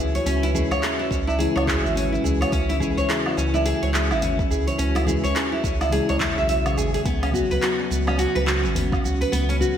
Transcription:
Already playing: C#2 C#3 E3 G#3 C#4 E4 F#4 G#4 B4 E5
0.15 C#5, open hi-hat, shaker
0.26 C#2 C#4, open hi-hat, shaker
0.43 E4, open hi-hat
0.54 C#3 E3 G#3 C#4 E4 G#4, tabla ge, shaker
0.71 C#2 C#5, open hi-hat, low woodblock, shaker
0.83 G#4, clap, open hi-hat, shaker
0.99 E4, tabla tin
1.10 C#2 C#4, kick, tabla tin, shaker
1.27 E4, tabla na, shaker
1.37 C#3 E3 G#3 C#4 E4 G#4, open hi-hat, shaker
1.56 C#2 C#5, open hi-hat, tabla na, low woodblock
1.67 G#4, kick, clap, tabla ge, shaker
1.84 G#1 E4, shaker
1.95 C#4, open hi-hat, shaker
2.12 E4, shaker
2.24 C#2 G#4, tabla tin, tabla ge, shaker
2.41 C#5, open hi-hat, tabla na, low woodblock, shaker
2.52 C#2 C#4, kick, open hi-hat, shaker
2.69 E4, open hi-hat
2.78 C#3 E3 G#3 C#4 G#4, kick, tabla ge, shaker
2.83 E4
2.97 C#2 C#5, open hi-hat, shaker
3.09 G#4, clap, open hi-hat, shaker
3.25 E4, tabla na, tabla tin, low woodblock
3.37 C#2 C#4, tabla tin, shaker
3.54 E4, tabla na, shaker
3.65 G#4, open hi-hat, shaker
3.83 C#2 C#5, open hi-hat
3.94 G#4, clap, shaker
4.11 G#1 E4, low woodblock, shaker
4.22 C#4, open hi-hat, tabla ge, shaker
4.39 E4, kick, shaker
4.50 C#2 G#4, tabla tin, tabla ge, shaker
4.67 C#5, open hi-hat, shaker
4.78 C#2 C#4, open hi-hat, shaker
4.95 E4, open hi-hat, low woodblock
5.06 C#3 E3 G#3 C#4 E4 G#4, tabla ge, shaker
5.24 C#2 C#5, open hi-hat, shaker
5.35 G#4, clap, open hi-hat, shaker
5.52 E4, tabla na, tabla tin
5.64 C#2 C#4, kick, tabla tin, shaker
5.81 E4, open hi-hat, tabla na, low woodblock, shaker
5.89 C#3 E3 G#3 C#4 G#4, open hi-hat, shaker
5.94 E4
6.09 C#2 C#5, open hi-hat, tabla na
6.20 E4, kick, clap, tabla ge, shaker
6.38 B1 E5, shaker
6.49 E5, open hi-hat, shaker
6.64 C#3 E3 G#3 C#4 G#4 C#5, open hi-hat, low woodblock, shaker
6.77 G#1 G#4, tabla tin, tabla ge, shaker
6.94 G#4, open hi-hat, tabla na, shaker
7.05 C#2 B3 C#4, kick, open hi-hat, shaker
7.23 C#4, open hi-hat, low woodblock
7.31 C#3 F#3 B3 C#4 F#4, kick, tabla ge, shaker
7.35 F#4
7.51 C#2 F#4 B4, open hi-hat, shaker
7.62 F#4, clap, open hi-hat, shaker
7.79 C#4, tabla na, tabla tin
7.90 C#2 B3, shaker
8.07 C#4, tabla na, low woodblock, shaker
8.18 F#4, open hi-hat, shaker
8.35 C#2 B4, open hi-hat
8.47 F#4, clap, tabla tin, shaker
8.64 G#1 C#4, shaker
8.75 B3, open hi-hat, tabla ge, shaker
8.92 C#4, kick, low woodblock, shaker
9.03 C#2 F#4, tabla tin, tabla ge, shaker
9.21 B4, open hi-hat, shaker
9.32 C#2 B3, open hi-hat, shaker
9.49 C#4, open hi-hat
9.59 C#3 F#3 B3 C#4 F#4, tabla ge, shaker

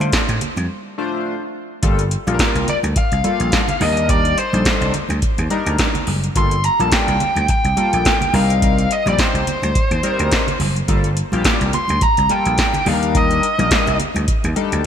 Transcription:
Already playing: A3 D4 F4 C5
0.00 D3, closed hi-hat, high conga
0.12 kick, snare, closed hi-hat
0.28 A2, closed hi-hat, muted conga
0.41 closed hi-hat, low conga
0.56 F2, closed hi-hat, high conga
0.98 A3 D4 F4 C5
1.82 G1 G3 A#3 F4 A4, kick, closed hi-hat, muted conga
1.99 closed hi-hat, muted conga
2.11 closed hi-hat
2.27 A#1 G3 A#3 F4 A4, closed hi-hat, high conga
2.34 A#4
2.39 kick, snare, closed hi-hat
2.55 C2, closed hi-hat
2.68 D5, closed hi-hat, low conga
2.83 D2, closed hi-hat, high conga
2.96 F5, kick, closed hi-hat, muted conga
3.12 C2, closed hi-hat
3.24 G3 A#3 F4 A4, closed hi-hat, high conga
3.40 A#1, closed hi-hat
3.52 kick, snare, closed hi-hat, high conga
3.68 closed hi-hat, muted conga, low conga
3.80 D#2 G3 D4 D#4 A#4 D#5, open hi-hat, high conga, low conga
3.97 closed hi-hat
4.09 D5, kick, closed hi-hat, muted conga
4.25 closed hi-hat, muted conga
4.38 C5, closed hi-hat
4.53 A#1 G3 D4 D#4 A4, closed hi-hat, high conga
4.65 kick, snare, closed hi-hat, muted conga
4.81 C2, closed hi-hat, muted conga
4.94 closed hi-hat, low conga
5.09 D2, closed hi-hat, high conga
5.22 kick, closed hi-hat, muted conga
5.38 D#2, closed hi-hat, muted conga
5.50 G3 D4 D#4 A#4, closed hi-hat, high conga
5.66 D2, closed hi-hat
5.78 kick, snare, closed hi-hat, muted conga, high conga
5.95 closed hi-hat, muted conga, low conga
6.07 F#1, open hi-hat, high conga, low conga
6.24 closed hi-hat
6.35 G1 G3 A#3 F4 A4 C6, kick, closed hi-hat
6.51 closed hi-hat, muted conga
6.64 A#5, closed hi-hat
6.79 A#1 G3 A#3 F4 A4 A5, closed hi-hat, high conga
6.92 G5, kick, snare, closed hi-hat
7.08 C2, closed hi-hat
7.20 closed hi-hat, low conga
7.35 D2, closed hi-hat, high conga
7.48 G5, kick, closed hi-hat
7.65 C2, closed hi-hat
7.76 G3 A#3 F4 A4, closed hi-hat, high conga
7.93 A#1, closed hi-hat
8.05 kick, snare, closed hi-hat, muted conga, high conga
8.21 closed hi-hat, low conga
8.33 C2 G3 C4 D#4 A#4 F5, open hi-hat, high conga, low conga
8.50 closed hi-hat
8.62 kick, closed hi-hat
8.78 closed hi-hat
8.91 D#5, closed hi-hat
9.06 A#1 G3 C4 D#4 G4 D5, closed hi-hat, high conga
9.18 C5, kick, snare, closed hi-hat
9.34 C2, closed hi-hat
9.47 closed hi-hat, low conga
9.62 D2, closed hi-hat, high conga
9.75 kick, closed hi-hat, muted conga
9.91 D#2, closed hi-hat
10.03 G3 C4 D#4 A#4, closed hi-hat, high conga
10.19 D2, closed hi-hat
10.32 kick, snare, closed hi-hat
10.48 closed hi-hat, low conga
10.60 F#1, open hi-hat, high conga, low conga
10.76 closed hi-hat
10.88 G1 G3 A#3 F4 A4, kick, closed hi-hat, muted conga
11.04 closed hi-hat, muted conga
11.17 closed hi-hat
11.32 A#1 G3 A#3 F4 G4, closed hi-hat, high conga
11.44 kick, snare, closed hi-hat, muted conga
11.61 C2, closed hi-hat
11.73 C6, closed hi-hat, low conga
11.88 D2, closed hi-hat, high conga
12.01 A#5, kick, closed hi-hat, muted conga
12.17 C2, closed hi-hat
12.29 G3 A#3 F4 A4 G5, closed hi-hat, high conga
12.46 A#1, closed hi-hat
12.58 kick, snare, closed hi-hat, high conga
12.74 closed hi-hat, muted conga, low conga
12.86 D#2 G3 D4 D#4 A4 F5, open hi-hat, high conga, low conga
12.93 A#4
13.03 closed hi-hat
13.15 D#5, kick, closed hi-hat
13.30 closed hi-hat, muted conga
13.43 closed hi-hat
13.58 A#1 G3 A#3 D#4 A#4, closed hi-hat, high conga
13.71 kick, snare, closed hi-hat
13.87 C2, closed hi-hat, muted conga
14.00 closed hi-hat, low conga
14.15 D2, closed hi-hat, high conga
14.28 kick, closed hi-hat, muted conga
14.44 D#2, closed hi-hat, muted conga
14.56 G3 D4 D#4 A4, closed hi-hat, high conga
14.72 D2, closed hi-hat

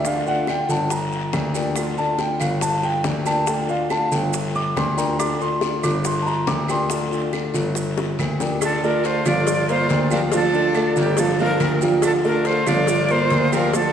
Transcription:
Already playing: D2
0.05 D3 A3 D4 F4 F5, high bongo, long guiro, maracas
0.26 A3 D4 F4 F#5, maracas
0.47 D3 A3 D4 F4 G5, high bongo, short guiro, claves, maracas
0.69 G1 A5, high bongo, short guiro, maracas
0.90 A#5, muted steel-string acoustic guitar stroke, high bongo, long guiro, maracas
1.12 maracas
1.33 D2 F3 A#3 D4 G4, high bongo, low bongo, short guiro, claves, maracas
1.54 F3 A#3 D4 G4, high bongo, short guiro, maracas
1.76 D3 A3 D4 F4, high bongo, long guiro, claves, maracas
1.97 A3 D4 F4 A5, maracas
2.18 D3 A3 D4 F4 G5, high bongo, short guiro, maracas
2.40 G1 F5, high bongo, short guiro, claves, maracas
2.61 A5, muted steel-string acoustic guitar stroke, high bongo, long guiro, maracas
2.83 G5, high bongo, maracas
3.04 D2 F3 A#3 D4 G4, high bongo, low bongo, short guiro, maracas
3.25 F3 A#3 D4 G4 A5, high bongo, short guiro, claves, maracas
3.47 D3 A3 D4 F4 G5, high bongo, long guiro, maracas
3.69 A3 D4 F4 F5, maracas
3.90 D3 A3 D4 F4 A5, high bongo, short guiro, claves, maracas
4.12 G1 G5, high bongo, short guiro, maracas
4.33 muted steel-string acoustic guitar stroke, high bongo, long guiro, maracas
4.55 D6, maracas
4.76 D2 F3 A#3 D4 G4 C6, high bongo, low bongo, short guiro, claves, maracas
4.97 F3 A#3 D4 G4 A#5, high bongo, short guiro, maracas
5.19 D3 A3 D4 F4 D6, high bongo, long guiro, claves, maracas
5.40 A3 D4 F4 C6, maracas
5.61 D3 A3 D4 F4, high bongo, short guiro, maracas
5.83 G1 D6, high bongo, short guiro, claves, maracas
6.04 C6, muted steel-string acoustic guitar stroke, high bongo, long guiro, maracas
6.22 A5
6.26 A#5, high bongo, maracas
6.47 D2 F3 A#3 D4 G4 D6, high bongo, low bongo, short guiro, maracas
6.68 F3 A#3 D4 G4 C6, high bongo, short guiro, claves, maracas
6.90 D3 A3 D4 F4, high bongo, long guiro, maracas
7.11 A3 D4 F4, maracas
7.32 D3 A3 D4 F4, high bongo, short guiro, claves, maracas
7.54 G1, high bongo, short guiro, maracas
7.75 muted steel-string acoustic guitar stroke, high bongo, long guiro, maracas
7.98 high bongo, maracas
8.19 D2 F3 A#3 D4 G4, short guiro, claves, maracas
8.40 F3 A#3 D4 G4, low bongo, short guiro, maracas
8.61 D3 A3 D4 F4 A4, cowbell, long guiro, claves, maracas
8.83 A3 D4 F4 A4 A#4 D5, maracas
9.04 D3 A3 D4 F4 C5, cowbell, short guiro, maracas
9.25 G1 F3 F4 D5 F5, cowbell, short guiro, claves, maracas
9.47 muted steel-string acoustic guitar stroke, cowbell, long guiro, maracas
9.69 A#3 F4 A#4 C5 D5, cowbell, maracas
9.89 D2 F3 A#3 D4 G4, cowbell, short guiro, maracas
10.11 F3 A#3 D4 F4 G4 A#4 F5, short guiro, claves, maracas
10.32 D3 F3 A3 D4 F4 A4 F5, cowbell, long guiro, maracas
10.53 A3 D4 F4, maracas
10.75 D3 A3 D4 F4 A4 D5, cowbell, short guiro, claves, maracas
10.96 G1 A#3 G4, short guiro, maracas
11.17 F3 D4 F4 A4 F5, muted steel-string acoustic guitar stroke, cowbell, long guiro, maracas
11.39 F3 D4 F4 A#4 F5, maracas
11.60 D2 F3 A#3 D4 G4, cowbell, short guiro, claves, maracas
11.81 F3 A#3 D4 F4 G4 F5, short guiro, maracas
12.02 D3 A3 D4 F4 A4, cowbell, long guiro, claves, maracas
12.24 A3 D4 F4 A4 A#4 D5, maracas
12.45 D3 A3 D4 F4 C5, cowbell, short guiro, maracas
12.66 G1 F3 F4 D5 F5, cowbell, short guiro, claves, maracas
12.87 muted steel-string acoustic guitar stroke, cowbell, long guiro, maracas
13.09 A#3 F4 A#4 C5 D5, cowbell, maracas
13.30 D2 F3 A#3 D4 G4, cowbell, short guiro, maracas
13.52 F3 A#3 D4 F4 G4 A#4 F5, short guiro, claves, maracas
13.72 D3 F3 A3 D4 F4 A4 F5, cowbell, long guiro, maracas

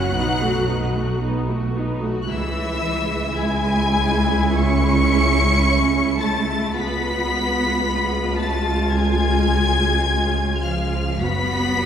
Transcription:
Already playing: F#1 F#3 C#4 F#4 F#5 F#6
0.14 B1 B3 D#4
0.41 A3 F#4
0.68 B3 D#4
0.95 A3 F#4
1.22 B3 D#4
1.49 A3 F#4
1.76 B3 D#4
2.03 A3 F#4
2.22 F#6
2.29 C#2 E3 G#3 E4 E5 E6
3.36 G#3 G#5 G#6
4.53 C#4 C#6 C#7
6.17 A3 A5 A6
6.72 C#2 G#3 B3 F4 B5 B6
8.36 A3 A5 A6
8.92 G#3 G#5 G#6
10.61 F3 F5 F6
11.21 F#1 F#3 B3 F#4 B5 B6

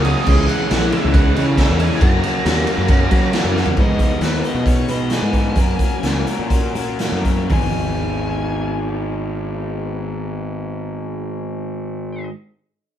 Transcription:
Already playing: C#2 C#3 A#3 F#4 C#5
0.02 F#3 A#3 C#4 F#4 D#5, ride
0.07 F#3 A#3 A#4
0.15 C#4 F#4 A#4, snare
0.26 C#2 C#3 E3 G#3 C#4 E4 G#4 C#5, kick, crash
0.47 G#3 C#4 E4 F#5, ride
0.60 C#4 E4 G#4
0.69 A#1 C#3 E3 G#3 C#4 E4 G#4 F#5, snare, ride
0.74 C#4
0.90 G#3 C#4 E5, ride
0.94 E3 G#3 E4 G#4
1.04 C#2 C#4 E4 G#4
1.13 C#3 E3 G#3 C#4 E4 G#4 F#5, kick, ride
1.17 G#3 C#4
1.24 C#4 E4 G#4
1.35 C#3 G#3 C#4 E4 G#4 F#5, ride
1.45 C#4 E4 G#4
1.56 C#3 E3 G#3 C#4 E4 E5, kick, snare, ride
1.70 E2
1.77 E3 G#3 C#4 E4 G#5, ride
1.82 G#4
1.89 C#4 E4 G#4, snare
1.99 F#2 C#3 F#3 A#3 C#4 F#4 C#5 A#5, kick, ride
2.03 C#4 A#4
2.23 F#3 A#3 C#4 F#4, ride
2.34 C#4 F#4 A#4
2.45 D#2 F#2 C#3 F#3 A#3 C#4 F#4 A#4, snare, ride
2.66 F#3 A#3 C#4 F#4, ride
2.70 A#4
2.78 F#2
2.88 F#2 C#3 F#3 A#3 C#4 F#4 A#4, kick, ride
2.99 C#4 F#4 A#4
3.10 F#3 C#4 F#4 A#4, kick, ride
3.22 C#4 F#4 A#4
3.31 C#3 F#3 A#3 C#4 F#4, snare, ride
3.35 C#4
3.44 F#2
3.55 F#3 A#3 C#4 F#4 A#4, snare
3.66 C#4 F#4 A#4, floor tom
3.77 G#2 D#3 G#3 B3 D#4 B4 D#5, kick, crash
3.99 D#5, kick, closed hi-hat
4.10 G#3 B3 D#4 B4
4.20 D#2 G#2 D#3 G#3 B3 D#4 B4, snare, closed hi-hat
4.34 snare
4.43 G#3 B3 D#4 B4 D#5, closed hi-hat
4.55 B2
4.66 C#5, kick, closed hi-hat
4.76 G#3 B3 D#4 B4
4.87 B2 G#3 B3 D#4 B4 D#5, closed hi-hat
5.09 G#2 D#3 G#3 B3 D#4 B4 G#5, snare, closed hi-hat
5.22 G#2 G#3 B3 D#4 B4
5.32 B3 D#4 B4, kick, closed hi-hat
5.45 G#3 B3 D#4 B4
5.56 F#2 F#3 A#3 C#4 F#4 A#4, kick, closed hi-hat
5.69 C#4 F#4 A#4
5.79 kick, closed hi-hat
5.93 C#4 F#4 A#4
6.03 C#2 F#3 C#4 F#4 A#4, snare, closed hi-hat
6.14 C#4 F#4 A#4
6.27 F#3 C#4 F#4 A#4, closed hi-hat
6.39 A#2
6.50 kick, closed hi-hat
6.64 C#4 F#4 A#4
6.75 A#2 F#3 C#4 F#4 A#4, closed hi-hat
6.79 A#4
6.99 F#3 A#3 C#4 F#4 A#4, snare, closed hi-hat
7.12 F#2 C#4 F#4 A#4
7.25 C#4 F#4 A#4, kick, closed hi-hat
7.38 C#4 F#4 A#4
7.48 G#1 G#2 G#3 B3 D#4 G#4, kick, floor tom, open hi-hat
7.52 D#3 G#3 G#5
7.56 B3 D#4
7.60 G#4

